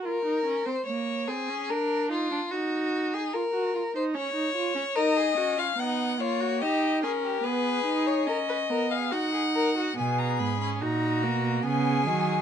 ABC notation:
X:1
M:3/4
L:1/16
Q:1/4=73
K:Ebm
V:1 name="Violin"
z12 | z12 | e3 f g2 d2 e2 B2 | c3 d e3 f g4 |
[K:G#dor] g a b b a4 g4 |]
V:2 name="Violin"
B3 =c d2 A2 B2 F2 | G3 A B3 =c d4 | B A G F E2 F G =G2 A G | A4 B c B A G A B G |
[K:G#dor] G4 F4 G4 |]
V:3 name="Viola"
F E D =C B,2 C D =D2 E D | E4 F G F E D E F D | E2 D2 C2 B,2 E2 D2 | C2 E2 D2 C2 E4 |
[K:G#dor] B,3 C D2 A,2 B,2 F,2 |]
V:4 name="Cello" clef=bass
z12 | z12 | z12 | z12 |
[K:G#dor] B,,2 G,,2 A,,2 B,,2 C,2 D,2 |]